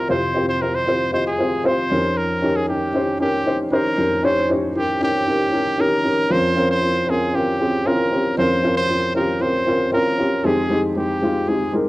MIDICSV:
0, 0, Header, 1, 3, 480
1, 0, Start_track
1, 0, Tempo, 517688
1, 90, Time_signature, 4, 2, 24, 8
1, 11023, End_track
2, 0, Start_track
2, 0, Title_t, "Trumpet"
2, 0, Program_c, 0, 56
2, 95, Note_on_c, 0, 72, 78
2, 428, Note_off_c, 0, 72, 0
2, 453, Note_on_c, 0, 72, 84
2, 573, Note_on_c, 0, 70, 76
2, 587, Note_off_c, 0, 72, 0
2, 694, Note_on_c, 0, 72, 88
2, 708, Note_off_c, 0, 70, 0
2, 1049, Note_off_c, 0, 72, 0
2, 1054, Note_on_c, 0, 72, 88
2, 1164, Note_off_c, 0, 72, 0
2, 1178, Note_on_c, 0, 68, 72
2, 1539, Note_on_c, 0, 72, 89
2, 1553, Note_off_c, 0, 68, 0
2, 2014, Note_on_c, 0, 70, 74
2, 2028, Note_off_c, 0, 72, 0
2, 2373, Note_on_c, 0, 68, 72
2, 2387, Note_off_c, 0, 70, 0
2, 2486, Note_off_c, 0, 68, 0
2, 2491, Note_on_c, 0, 67, 65
2, 2938, Note_off_c, 0, 67, 0
2, 2978, Note_on_c, 0, 67, 72
2, 3320, Note_off_c, 0, 67, 0
2, 3453, Note_on_c, 0, 70, 79
2, 3933, Note_on_c, 0, 72, 71
2, 3947, Note_off_c, 0, 70, 0
2, 4172, Note_off_c, 0, 72, 0
2, 4425, Note_on_c, 0, 67, 72
2, 4642, Note_off_c, 0, 67, 0
2, 4663, Note_on_c, 0, 67, 83
2, 5380, Note_on_c, 0, 70, 91
2, 5394, Note_off_c, 0, 67, 0
2, 5855, Note_on_c, 0, 72, 93
2, 5869, Note_off_c, 0, 70, 0
2, 6213, Note_off_c, 0, 72, 0
2, 6219, Note_on_c, 0, 72, 92
2, 6582, Note_on_c, 0, 68, 77
2, 6596, Note_off_c, 0, 72, 0
2, 6816, Note_on_c, 0, 67, 80
2, 6830, Note_off_c, 0, 68, 0
2, 7296, Note_on_c, 0, 70, 85
2, 7310, Note_off_c, 0, 67, 0
2, 7764, Note_off_c, 0, 70, 0
2, 7770, Note_on_c, 0, 72, 85
2, 8105, Note_off_c, 0, 72, 0
2, 8130, Note_on_c, 0, 72, 97
2, 8465, Note_off_c, 0, 72, 0
2, 8490, Note_on_c, 0, 70, 76
2, 8730, Note_on_c, 0, 72, 84
2, 8744, Note_off_c, 0, 70, 0
2, 9201, Note_off_c, 0, 72, 0
2, 9207, Note_on_c, 0, 70, 83
2, 9690, Note_on_c, 0, 68, 72
2, 9704, Note_off_c, 0, 70, 0
2, 10028, Note_off_c, 0, 68, 0
2, 10170, Note_on_c, 0, 67, 63
2, 10648, Note_on_c, 0, 68, 64
2, 10662, Note_off_c, 0, 67, 0
2, 10888, Note_off_c, 0, 68, 0
2, 11023, End_track
3, 0, Start_track
3, 0, Title_t, "Upright piano"
3, 0, Program_c, 1, 0
3, 0, Control_c, 1, 64, 127
3, 0, Note_on_c, 1, 41, 51
3, 0, Note_on_c, 1, 48, 51
3, 0, Note_on_c, 1, 60, 56
3, 0, Note_on_c, 1, 65, 56
3, 0, Note_on_c, 1, 67, 56
3, 0, Note_on_c, 1, 70, 62
3, 0, Note_on_c, 1, 72, 65
3, 0, Note_on_c, 1, 75, 80
3, 82, Note_off_c, 1, 60, 0
3, 82, Note_on_c, 1, 60, 81
3, 88, Note_off_c, 1, 65, 0
3, 88, Note_on_c, 1, 65, 73
3, 91, Note_off_c, 1, 41, 0
3, 91, Note_on_c, 1, 41, 55
3, 92, Note_off_c, 1, 48, 0
3, 92, Note_on_c, 1, 48, 49
3, 93, Note_off_c, 1, 67, 0
3, 93, Note_on_c, 1, 67, 70
3, 102, Note_off_c, 1, 72, 0
3, 102, Note_on_c, 1, 72, 89
3, 255, Note_off_c, 1, 60, 0
3, 258, Note_off_c, 1, 65, 0
3, 260, Note_off_c, 1, 67, 0
3, 265, Note_off_c, 1, 72, 0
3, 320, Note_on_c, 1, 60, 69
3, 325, Note_on_c, 1, 65, 65
3, 335, Note_on_c, 1, 67, 72
3, 340, Note_on_c, 1, 72, 75
3, 494, Note_off_c, 1, 60, 0
3, 497, Note_off_c, 1, 65, 0
3, 501, Note_off_c, 1, 67, 0
3, 504, Note_off_c, 1, 72, 0
3, 563, Note_on_c, 1, 60, 53
3, 569, Note_on_c, 1, 65, 44
3, 577, Note_on_c, 1, 67, 46
3, 584, Note_on_c, 1, 72, 58
3, 736, Note_off_c, 1, 60, 0
3, 739, Note_off_c, 1, 65, 0
3, 743, Note_off_c, 1, 67, 0
3, 746, Note_off_c, 1, 72, 0
3, 803, Note_on_c, 1, 60, 63
3, 810, Note_on_c, 1, 65, 60
3, 816, Note_on_c, 1, 67, 56
3, 822, Note_on_c, 1, 72, 76
3, 976, Note_off_c, 1, 60, 0
3, 979, Note_off_c, 1, 65, 0
3, 982, Note_off_c, 1, 67, 0
3, 985, Note_off_c, 1, 72, 0
3, 1037, Note_on_c, 1, 60, 58
3, 1043, Note_on_c, 1, 65, 54
3, 1050, Note_on_c, 1, 67, 57
3, 1055, Note_off_c, 1, 75, 0
3, 1055, Note_on_c, 1, 75, 66
3, 1213, Note_off_c, 1, 60, 0
3, 1216, Note_off_c, 1, 65, 0
3, 1219, Note_off_c, 1, 67, 0
3, 1222, Note_off_c, 1, 75, 0
3, 1285, Note_on_c, 1, 60, 60
3, 1292, Note_on_c, 1, 65, 54
3, 1298, Note_on_c, 1, 67, 54
3, 1303, Note_on_c, 1, 72, 68
3, 1457, Note_off_c, 1, 60, 0
3, 1461, Note_off_c, 1, 65, 0
3, 1464, Note_off_c, 1, 67, 0
3, 1466, Note_off_c, 1, 72, 0
3, 1522, Note_on_c, 1, 60, 80
3, 1528, Note_on_c, 1, 65, 74
3, 1535, Note_on_c, 1, 67, 63
3, 1541, Note_on_c, 1, 72, 88
3, 1695, Note_off_c, 1, 60, 0
3, 1699, Note_off_c, 1, 65, 0
3, 1702, Note_off_c, 1, 67, 0
3, 1705, Note_off_c, 1, 72, 0
3, 1734, Note_off_c, 1, 41, 0
3, 1735, Note_off_c, 1, 48, 0
3, 1764, Note_on_c, 1, 61, 67
3, 1772, Note_on_c, 1, 63, 58
3, 1773, Note_on_c, 1, 41, 54
3, 1775, Note_on_c, 1, 53, 58
3, 1778, Note_on_c, 1, 67, 59
3, 1783, Note_off_c, 1, 70, 0
3, 1783, Control_c, 1, 64, 0
3, 1783, Note_on_c, 1, 70, 75
3, 1944, Control_c, 1, 64, 127
3, 2152, Note_off_c, 1, 61, 0
3, 2156, Note_off_c, 1, 63, 0
3, 2159, Note_off_c, 1, 67, 0
3, 2161, Note_off_c, 1, 70, 0
3, 2245, Note_on_c, 1, 61, 78
3, 2253, Note_on_c, 1, 63, 70
3, 2258, Note_on_c, 1, 67, 68
3, 2265, Note_on_c, 1, 70, 83
3, 2417, Note_off_c, 1, 61, 0
3, 2421, Note_off_c, 1, 63, 0
3, 2423, Note_off_c, 1, 67, 0
3, 2427, Note_off_c, 1, 70, 0
3, 2486, Note_on_c, 1, 61, 53
3, 2491, Note_on_c, 1, 63, 50
3, 2497, Note_on_c, 1, 67, 49
3, 2504, Note_on_c, 1, 70, 52
3, 2658, Note_off_c, 1, 61, 0
3, 2660, Note_off_c, 1, 63, 0
3, 2663, Note_off_c, 1, 67, 0
3, 2667, Note_off_c, 1, 70, 0
3, 2724, Note_on_c, 1, 61, 65
3, 2728, Note_on_c, 1, 63, 57
3, 2735, Note_on_c, 1, 67, 65
3, 2741, Note_on_c, 1, 72, 73
3, 2897, Note_off_c, 1, 61, 0
3, 2899, Note_off_c, 1, 63, 0
3, 2902, Note_off_c, 1, 67, 0
3, 2905, Note_off_c, 1, 72, 0
3, 2964, Note_on_c, 1, 61, 68
3, 2968, Note_on_c, 1, 63, 53
3, 2975, Note_on_c, 1, 67, 61
3, 2979, Note_on_c, 1, 70, 69
3, 3136, Note_off_c, 1, 61, 0
3, 3138, Note_off_c, 1, 63, 0
3, 3142, Note_off_c, 1, 67, 0
3, 3144, Note_off_c, 1, 70, 0
3, 3203, Note_on_c, 1, 61, 59
3, 3209, Note_on_c, 1, 63, 57
3, 3216, Note_on_c, 1, 67, 57
3, 3220, Note_on_c, 1, 72, 70
3, 3376, Note_off_c, 1, 61, 0
3, 3379, Note_off_c, 1, 63, 0
3, 3382, Note_off_c, 1, 67, 0
3, 3385, Note_off_c, 1, 72, 0
3, 3443, Note_on_c, 1, 61, 73
3, 3448, Note_on_c, 1, 63, 67
3, 3454, Note_on_c, 1, 67, 74
3, 3460, Note_on_c, 1, 72, 86
3, 3616, Note_off_c, 1, 61, 0
3, 3618, Note_off_c, 1, 63, 0
3, 3622, Note_off_c, 1, 67, 0
3, 3625, Note_off_c, 1, 72, 0
3, 3655, Note_off_c, 1, 41, 0
3, 3656, Note_off_c, 1, 53, 0
3, 3682, Note_on_c, 1, 61, 60
3, 3689, Note_on_c, 1, 63, 56
3, 3690, Note_on_c, 1, 41, 49
3, 3691, Note_on_c, 1, 53, 51
3, 3694, Note_on_c, 1, 67, 52
3, 3699, Note_on_c, 1, 70, 68
3, 3856, Note_off_c, 1, 61, 0
3, 3859, Note_off_c, 1, 63, 0
3, 3862, Note_off_c, 1, 67, 0
3, 3864, Note_off_c, 1, 70, 0
3, 3921, Note_on_c, 1, 61, 76
3, 3928, Note_on_c, 1, 63, 69
3, 3935, Note_on_c, 1, 67, 70
3, 3938, Note_on_c, 1, 73, 93
3, 4095, Note_off_c, 1, 61, 0
3, 4099, Note_off_c, 1, 63, 0
3, 4102, Note_off_c, 1, 67, 0
3, 4104, Note_off_c, 1, 73, 0
3, 4163, Note_on_c, 1, 61, 69
3, 4171, Note_on_c, 1, 63, 67
3, 4174, Note_on_c, 1, 67, 68
3, 4183, Note_on_c, 1, 72, 76
3, 4336, Note_off_c, 1, 61, 0
3, 4340, Note_off_c, 1, 63, 0
3, 4342, Note_off_c, 1, 67, 0
3, 4346, Note_off_c, 1, 72, 0
3, 4401, Note_on_c, 1, 61, 51
3, 4407, Note_on_c, 1, 63, 46
3, 4413, Note_on_c, 1, 67, 48
3, 4420, Note_on_c, 1, 70, 57
3, 4575, Note_off_c, 1, 61, 0
3, 4578, Note_off_c, 1, 63, 0
3, 4581, Note_off_c, 1, 67, 0
3, 4585, Note_off_c, 1, 70, 0
3, 4638, Note_on_c, 1, 61, 64
3, 4646, Note_on_c, 1, 63, 59
3, 4651, Note_on_c, 1, 67, 61
3, 4656, Note_on_c, 1, 70, 68
3, 4814, Note_off_c, 1, 61, 0
3, 4818, Note_off_c, 1, 63, 0
3, 4820, Note_off_c, 1, 67, 0
3, 4823, Note_off_c, 1, 70, 0
3, 4883, Note_on_c, 1, 61, 59
3, 4890, Note_on_c, 1, 63, 53
3, 4894, Note_on_c, 1, 67, 55
3, 4899, Note_on_c, 1, 70, 68
3, 5056, Note_off_c, 1, 61, 0
3, 5060, Note_off_c, 1, 63, 0
3, 5062, Note_off_c, 1, 67, 0
3, 5064, Note_off_c, 1, 70, 0
3, 5119, Note_on_c, 1, 61, 60
3, 5124, Note_on_c, 1, 63, 54
3, 5131, Note_on_c, 1, 67, 57
3, 5138, Note_on_c, 1, 70, 65
3, 5294, Note_off_c, 1, 61, 0
3, 5297, Note_off_c, 1, 63, 0
3, 5300, Note_off_c, 1, 67, 0
3, 5304, Note_off_c, 1, 70, 0
3, 5358, Note_on_c, 1, 61, 70
3, 5366, Note_on_c, 1, 63, 66
3, 5371, Note_on_c, 1, 67, 73
3, 5377, Note_on_c, 1, 70, 82
3, 5534, Note_off_c, 1, 61, 0
3, 5538, Note_off_c, 1, 63, 0
3, 5540, Note_off_c, 1, 67, 0
3, 5543, Note_off_c, 1, 70, 0
3, 5573, Note_off_c, 1, 41, 0
3, 5574, Note_off_c, 1, 53, 0
3, 5595, Note_on_c, 1, 61, 57
3, 5602, Note_on_c, 1, 63, 56
3, 5609, Note_on_c, 1, 67, 56
3, 5614, Note_on_c, 1, 70, 69
3, 5772, Note_off_c, 1, 61, 0
3, 5776, Note_off_c, 1, 63, 0
3, 5779, Note_off_c, 1, 67, 0
3, 5781, Note_off_c, 1, 70, 0
3, 5837, Note_on_c, 1, 60, 72
3, 5842, Note_on_c, 1, 61, 68
3, 5844, Note_on_c, 1, 53, 52
3, 5847, Note_on_c, 1, 41, 53
3, 5848, Note_on_c, 1, 65, 64
3, 5855, Note_on_c, 1, 70, 88
3, 5864, Control_c, 1, 64, 0
3, 6013, Note_off_c, 1, 60, 0
3, 6013, Control_c, 1, 64, 127
3, 6015, Note_off_c, 1, 61, 0
3, 6018, Note_off_c, 1, 65, 0
3, 6022, Note_off_c, 1, 70, 0
3, 6076, Note_on_c, 1, 60, 69
3, 6082, Note_on_c, 1, 61, 66
3, 6088, Note_on_c, 1, 65, 69
3, 6096, Note_on_c, 1, 70, 81
3, 6253, Note_off_c, 1, 60, 0
3, 6256, Note_off_c, 1, 61, 0
3, 6259, Note_off_c, 1, 65, 0
3, 6262, Note_off_c, 1, 70, 0
3, 6318, Note_on_c, 1, 60, 51
3, 6325, Note_on_c, 1, 61, 49
3, 6330, Note_on_c, 1, 65, 47
3, 6335, Note_on_c, 1, 70, 56
3, 6494, Note_off_c, 1, 60, 0
3, 6497, Note_off_c, 1, 61, 0
3, 6499, Note_off_c, 1, 65, 0
3, 6502, Note_off_c, 1, 70, 0
3, 6556, Note_on_c, 1, 60, 66
3, 6563, Note_on_c, 1, 61, 59
3, 6570, Note_on_c, 1, 65, 57
3, 6578, Note_on_c, 1, 70, 68
3, 6732, Note_off_c, 1, 60, 0
3, 6736, Note_off_c, 1, 61, 0
3, 6740, Note_off_c, 1, 65, 0
3, 6743, Note_off_c, 1, 70, 0
3, 6803, Note_on_c, 1, 60, 66
3, 6809, Note_on_c, 1, 61, 55
3, 6816, Note_on_c, 1, 65, 58
3, 6822, Note_on_c, 1, 70, 69
3, 6976, Note_off_c, 1, 60, 0
3, 6979, Note_off_c, 1, 61, 0
3, 6982, Note_off_c, 1, 65, 0
3, 6986, Note_off_c, 1, 70, 0
3, 7045, Note_on_c, 1, 60, 56
3, 7051, Note_on_c, 1, 61, 52
3, 7055, Note_on_c, 1, 65, 53
3, 7062, Note_on_c, 1, 68, 65
3, 7217, Note_off_c, 1, 60, 0
3, 7220, Note_off_c, 1, 61, 0
3, 7222, Note_off_c, 1, 65, 0
3, 7225, Note_off_c, 1, 68, 0
3, 7284, Note_on_c, 1, 60, 76
3, 7290, Note_on_c, 1, 61, 68
3, 7295, Note_on_c, 1, 65, 75
3, 7302, Note_on_c, 1, 70, 80
3, 7456, Note_off_c, 1, 60, 0
3, 7459, Note_off_c, 1, 61, 0
3, 7462, Note_off_c, 1, 65, 0
3, 7465, Note_off_c, 1, 70, 0
3, 7524, Note_on_c, 1, 60, 63
3, 7532, Note_on_c, 1, 61, 59
3, 7538, Note_on_c, 1, 65, 54
3, 7546, Note_on_c, 1, 67, 65
3, 7696, Note_off_c, 1, 60, 0
3, 7700, Note_off_c, 1, 61, 0
3, 7703, Note_off_c, 1, 65, 0
3, 7707, Note_off_c, 1, 67, 0
3, 7730, Note_off_c, 1, 53, 0
3, 7731, Note_off_c, 1, 41, 0
3, 7763, Note_on_c, 1, 60, 80
3, 7768, Note_on_c, 1, 61, 72
3, 7771, Note_on_c, 1, 41, 51
3, 7773, Note_on_c, 1, 53, 50
3, 7773, Note_on_c, 1, 65, 69
3, 7780, Note_on_c, 1, 70, 89
3, 7936, Note_off_c, 1, 60, 0
3, 7938, Note_off_c, 1, 61, 0
3, 7941, Note_off_c, 1, 65, 0
3, 7944, Note_off_c, 1, 70, 0
3, 8002, Note_on_c, 1, 60, 67
3, 8007, Note_on_c, 1, 61, 69
3, 8014, Note_on_c, 1, 65, 66
3, 8017, Note_on_c, 1, 70, 78
3, 8175, Note_off_c, 1, 60, 0
3, 8178, Note_off_c, 1, 61, 0
3, 8181, Note_off_c, 1, 65, 0
3, 8183, Note_off_c, 1, 70, 0
3, 8243, Note_on_c, 1, 60, 57
3, 8247, Note_on_c, 1, 61, 50
3, 8254, Note_on_c, 1, 65, 50
3, 8261, Note_on_c, 1, 70, 52
3, 8416, Note_off_c, 1, 60, 0
3, 8418, Note_off_c, 1, 61, 0
3, 8421, Note_off_c, 1, 65, 0
3, 8424, Note_off_c, 1, 70, 0
3, 8483, Note_on_c, 1, 60, 67
3, 8488, Note_on_c, 1, 61, 56
3, 8495, Note_on_c, 1, 65, 61
3, 8501, Note_on_c, 1, 67, 72
3, 8655, Note_off_c, 1, 60, 0
3, 8658, Note_off_c, 1, 61, 0
3, 8662, Note_off_c, 1, 65, 0
3, 8664, Note_off_c, 1, 67, 0
3, 8718, Note_on_c, 1, 60, 64
3, 8723, Note_on_c, 1, 61, 54
3, 8730, Note_on_c, 1, 65, 55
3, 8737, Note_on_c, 1, 70, 67
3, 8893, Note_off_c, 1, 60, 0
3, 8895, Note_off_c, 1, 61, 0
3, 8899, Note_off_c, 1, 65, 0
3, 8902, Note_off_c, 1, 70, 0
3, 8959, Note_on_c, 1, 60, 66
3, 8965, Note_on_c, 1, 61, 54
3, 8971, Note_on_c, 1, 65, 61
3, 8978, Note_on_c, 1, 70, 71
3, 9133, Note_off_c, 1, 60, 0
3, 9136, Note_off_c, 1, 61, 0
3, 9139, Note_off_c, 1, 65, 0
3, 9143, Note_off_c, 1, 70, 0
3, 9196, Note_on_c, 1, 60, 82
3, 9204, Note_on_c, 1, 61, 70
3, 9206, Note_on_c, 1, 65, 67
3, 9215, Note_on_c, 1, 70, 83
3, 9372, Note_off_c, 1, 60, 0
3, 9375, Note_off_c, 1, 61, 0
3, 9377, Note_off_c, 1, 65, 0
3, 9381, Note_off_c, 1, 70, 0
3, 9439, Note_on_c, 1, 60, 62
3, 9444, Note_on_c, 1, 61, 57
3, 9449, Note_on_c, 1, 65, 58
3, 9455, Note_on_c, 1, 67, 66
3, 9613, Note_off_c, 1, 60, 0
3, 9615, Note_off_c, 1, 61, 0
3, 9618, Note_off_c, 1, 65, 0
3, 9621, Note_off_c, 1, 67, 0
3, 9652, Note_off_c, 1, 41, 0
3, 9653, Note_off_c, 1, 53, 0
3, 9679, Note_on_c, 1, 56, 78
3, 9683, Note_on_c, 1, 60, 72
3, 9687, Note_on_c, 1, 41, 53
3, 9688, Note_on_c, 1, 53, 54
3, 9689, Note_on_c, 1, 63, 71
3, 9697, Note_on_c, 1, 67, 92
3, 9699, Control_c, 1, 64, 0
3, 9853, Note_off_c, 1, 56, 0
3, 9855, Note_off_c, 1, 60, 0
3, 9858, Note_off_c, 1, 63, 0
3, 9862, Note_off_c, 1, 67, 0
3, 9884, Control_c, 1, 64, 127
3, 9918, Note_on_c, 1, 56, 76
3, 9925, Note_on_c, 1, 60, 63
3, 9930, Note_on_c, 1, 63, 68
3, 9936, Note_on_c, 1, 67, 86
3, 10092, Note_off_c, 1, 56, 0
3, 10096, Note_off_c, 1, 60, 0
3, 10098, Note_off_c, 1, 63, 0
3, 10101, Note_off_c, 1, 67, 0
3, 10160, Note_on_c, 1, 56, 56
3, 10166, Note_on_c, 1, 60, 51
3, 10172, Note_on_c, 1, 63, 50
3, 10178, Note_on_c, 1, 67, 59
3, 10333, Note_off_c, 1, 56, 0
3, 10336, Note_off_c, 1, 60, 0
3, 10339, Note_off_c, 1, 63, 0
3, 10342, Note_off_c, 1, 67, 0
3, 10402, Note_on_c, 1, 56, 61
3, 10409, Note_on_c, 1, 60, 59
3, 10414, Note_on_c, 1, 63, 59
3, 10418, Note_on_c, 1, 65, 72
3, 10574, Note_off_c, 1, 56, 0
3, 10577, Note_off_c, 1, 60, 0
3, 10580, Note_off_c, 1, 63, 0
3, 10582, Note_off_c, 1, 65, 0
3, 10643, Note_on_c, 1, 56, 63
3, 10648, Note_on_c, 1, 60, 52
3, 10654, Note_on_c, 1, 63, 60
3, 10662, Note_on_c, 1, 67, 74
3, 10814, Note_off_c, 1, 56, 0
3, 10817, Note_off_c, 1, 60, 0
3, 10820, Note_off_c, 1, 63, 0
3, 10824, Note_off_c, 1, 67, 0
3, 10877, Note_on_c, 1, 56, 68
3, 10883, Note_on_c, 1, 60, 58
3, 10889, Note_on_c, 1, 63, 55
3, 10898, Note_on_c, 1, 70, 74
3, 11023, Note_off_c, 1, 41, 0
3, 11023, Note_off_c, 1, 53, 0
3, 11023, Note_off_c, 1, 56, 0
3, 11023, Note_off_c, 1, 60, 0
3, 11023, Note_off_c, 1, 63, 0
3, 11023, Note_off_c, 1, 70, 0
3, 11023, End_track
0, 0, End_of_file